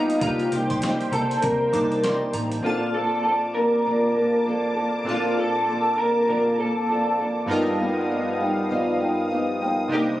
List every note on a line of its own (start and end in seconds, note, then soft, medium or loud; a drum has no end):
0.00 0.20 F3 soft
0.00 0.17 A#3 medium
0.00 0.21 B3 soft
0.00 0.20 D#4 soft
0.00 0.21 D#4 medium
0.00 0.22 D#4 medium
0.00 0.19 G4 medium
0.00 0.22 G4 medium
0.00 0.19 F5 medium
0.00 0.19 D#6 medium
0.10 closed hi-hat medium
0.18 0.46 C2 medium
0.18 0.51 C3 medium
0.18 0.51 G3 medium
0.18 1.68 A#3 medium
0.18 0.51 A#3 medium
0.18 1.69 D4 medium
0.18 1.70 D#4 soft
0.18 0.49 D#4 medium
0.18 2.61 C5 medium
0.18 2.61 G5 medium
0.18 0.50 A#5 loud
0.18 kick loud
0.18 closed hi-hat medium
0.23 0.53 F4 medium
0.23 1.71 G4 medium
0.39 closed hi-hat soft
0.51 1.00 C2 medium
0.51 0.81 G3 soft
0.51 0.81 A#3 soft
0.51 0.81 D#4 soft
0.51 1.12 G4 medium
0.51 closed hi-hat medium
0.70 0.99 C6 medium
0.70 kick medium
0.70 closed hi-hat medium
0.81 1.12 C3 medium
0.81 1.12 G3 medium
0.81 1.12 A#3 medium
0.81 1.11 D#4 medium
0.81 snare loud
0.81 closed hi-hat medium
1.01 closed hi-hat soft
1.12 1.36 C2 medium
1.12 1.42 G3 soft
1.12 1.43 A#3 soft
1.12 1.42 D#4 soft
1.12 1.42 A4 medium
1.12 1.29 A#5 medium
1.12 closed hi-hat medium
1.31 closed hi-hat medium
1.42 1.73 C3 medium
1.42 1.75 C3 medium
1.42 1.73 G3 medium
1.42 1.72 A#3 medium
1.42 1.71 D#4 medium
1.42 2.29 A#4 medium
1.42 kick medium
1.42 closed hi-hat medium
1.72 2.21 C2 medium
1.72 2.02 G3 soft
1.72 2.63 A#3 medium
1.72 2.03 A#3 soft
1.72 2.62 D4 soft
1.72 2.03 D#4 soft
1.72 2.64 D#4 soft
1.72 2.64 A5 medium
1.72 2.02 D6 medium
1.72 kick medium
1.72 closed hi-hat medium
1.92 closed hi-hat soft
2.03 2.33 C3 medium
2.03 2.34 G3 medium
2.03 2.34 A#3 medium
2.03 2.32 D#4 medium
2.03 2.21 C6 medium
2.03 snare loud
2.03 closed hi-hat medium
2.33 2.58 A1 medium
2.33 2.64 G3 soft
2.33 2.63 A#3 medium
2.33 2.64 D#4 medium
2.33 2.51 A#5 medium
2.33 closed hi-hat medium
2.52 closed hi-hat medium
2.62 5.01 A#2 medium
2.62 2.94 A#2 medium
2.62 2.94 D3 medium
2.62 2.94 F3 medium
2.62 2.94 A#3 medium
2.62 7.45 A#3 medium
2.62 5.02 C4 soft
2.62 5.02 D4 soft
2.62 2.93 D4 medium
2.62 2.92 F4 medium
2.62 5.03 F4 medium
2.62 2.92 A4 medium
2.62 7.45 A5 medium
2.62 7.45 D6 medium
2.66 5.03 A5 medium
2.93 3.23 F3 soft
2.93 3.24 A#3 soft
2.93 3.25 D4 soft
2.93 3.24 A4 medium
2.93 3.22 A4 loud
3.23 3.55 F3 medium
3.23 3.54 A#3 medium
3.23 3.54 D4 medium
3.23 3.31 A4 medium
3.23 3.56 A4 medium
3.54 3.84 F3 soft
3.54 3.85 A#3 soft
3.54 3.85 D4 medium
3.54 4.42 A#4 medium
3.85 4.15 A#2 medium
3.85 4.16 D3 medium
3.85 4.16 F3 medium
3.85 4.16 A#3 medium
3.85 4.15 D4 medium
4.16 4.44 F3 soft
4.16 4.46 A#3 soft
4.16 4.46 D4 soft
4.46 4.76 F3 medium
4.46 4.75 A#3 medium
4.46 4.75 D4 medium
4.46 4.74 A4 medium
4.75 5.06 F3 soft
4.75 5.06 A#3 medium
4.75 5.06 D4 medium
4.75 5.06 A4 medium
5.04 7.43 A#2 medium
5.04 5.36 A#2 medium
5.04 5.37 D3 medium
5.04 5.37 F3 medium
5.04 5.37 A#3 medium
5.04 7.44 C4 soft
5.04 7.45 D4 medium
5.04 5.36 D4 medium
5.04 7.45 F4 medium
5.08 5.39 F4 medium
5.08 5.35 A4 medium
5.08 7.46 A5 medium
5.36 5.66 F3 soft
5.36 5.67 A#3 soft
5.36 5.67 D4 soft
5.36 5.67 A4 medium
5.36 5.98 A4 loud
5.67 5.97 F3 medium
5.67 5.98 A#3 medium
5.67 5.97 D4 medium
5.67 5.99 A4 medium
5.98 6.26 F3 soft
5.98 6.27 A#3 soft
5.98 6.27 D4 medium
5.98 6.28 A#4 medium
6.27 6.58 A#2 medium
6.27 6.58 D3 medium
6.27 6.58 F3 medium
6.27 6.58 A#3 medium
6.27 6.57 D4 medium
6.27 6.57 A#4 loud
6.57 6.87 F3 soft
6.57 6.88 A#3 soft
6.57 6.88 D4 soft
6.57 6.88 A4 medium
6.57 7.15 A4 medium
6.88 7.18 F3 medium
6.88 7.19 A#3 medium
6.88 7.18 D4 medium
6.88 7.17 A4 medium
7.18 7.48 F3 medium
7.18 7.50 A#3 soft
7.18 7.49 D4 medium
7.18 7.49 A4 medium
7.46 9.86 G2 medium
7.46 7.79 G2 medium
7.46 7.79 D#3 medium
7.46 7.79 F3 medium
7.46 9.86 B3 medium
7.46 9.87 D#4 medium
7.46 9.87 F4 medium
7.46 10.20 D#6 medium
7.50 9.90 G3 medium
7.50 9.90 B3 medium
7.50 7.80 B3 medium
7.50 7.80 D#4 medium
7.50 7.78 G4 medium
7.50 9.88 A#4 medium
7.50 9.89 F5 medium
7.80 8.09 F3 soft
7.80 8.10 B3 soft
7.80 8.10 D#4 medium
7.80 8.10 G4 soft
8.10 8.40 F3 medium
8.10 8.40 B3 medium
8.10 8.40 D#4 medium
8.10 8.39 G4 medium
8.40 8.70 F3 soft
8.40 8.70 B3 soft
8.40 8.70 D#4 soft
8.40 8.70 G4 medium
8.69 9.00 G2 loud
8.69 9.00 D#3 medium
8.69 9.01 F3 medium
8.69 9.01 B3 medium
8.69 9.00 D#4 medium
8.69 8.99 G4 medium
9.00 9.29 F3 soft
9.00 9.30 B3 soft
9.00 9.31 D#4 soft
9.00 9.31 G4 soft
9.31 9.61 F3 medium
9.31 9.61 B3 medium
9.31 9.61 D#4 medium
9.31 9.60 G4 medium
9.61 9.91 F3 medium
9.61 9.92 B3 medium
9.61 9.92 D#4 medium
9.61 9.91 G4 medium
9.88 10.20 C3 medium
9.88 10.20 G3 medium
9.88 10.20 D4 soft
9.88 10.20 D#4 soft
9.88 10.20 G4 medium
9.88 10.20 C5 medium
9.88 10.20 A#5 medium
9.92 10.20 A#3 medium
9.92 10.20 D#4 medium
9.92 10.01 G4 medium
9.92 10.20 G4 medium
9.92 10.20 A#4 medium